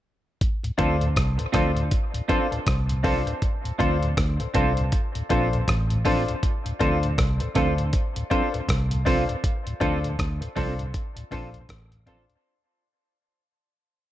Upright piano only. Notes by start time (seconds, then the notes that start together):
0.78 D4 F4 A4 C5
1.39 A4 C5
1.53 D4 F4 A4 C5
2.29 D4 F4 A4 C5
2.51 A4 C5
3.03 D4 F4 A4 C5
3.27 A4 C5
3.79 D4 F4 A4 C5
4.40 A4 C5
4.54 D4 F4 A4 C5
5.29 D4 F4 A4 C5
6.05 D4 F4 A4 C5
6.79 D4 F4 A4 C5
7.40 A4 C5
7.55 D4 F4 A4 C5
8.30 D4 F4 A4 C5
8.53 A4 C5
9.05 D4 F4 A4 C5
9.28 A4 C5
9.80 D4 F4 A4 C5
10.41 A4 C5
10.56 D4 F4 A4 C5
11.31 D4 F4 A4 C5
12.06 D4 F4 A4 C5